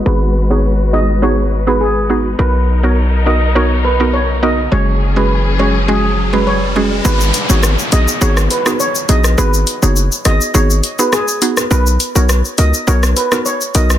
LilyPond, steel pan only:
\new Staff \with { instrumentName = "Steel pan" } { \time 4/4 \key gis \minor \tempo 4 = 103 b'8 r16 cis''16 r8 dis''16 r16 cis''16 r8 b'16 gis'8. r16 | b'16 r8 cis''16 r8 dis''16 r16 cis''16 r16 b'16 r16 cis''16 r16 dis''16 r16 | cis''8 r16 b'16 r8 cis''16 r16 gis'16 r8 b'16 cis''8. r16 | b'16 r8 cis''16 r8 dis''16 r16 cis''16 r16 b'16 r16 cis''16 r16 dis''16 r16 |
b'8 r16 cis''16 r8 dis''16 r16 cis''16 r8 b'16 gis'8. r16 | b'16 r8 cis''16 r8 dis''16 r16 cis''16 r16 b'16 r16 cis''16 r16 dis''16 r16 | }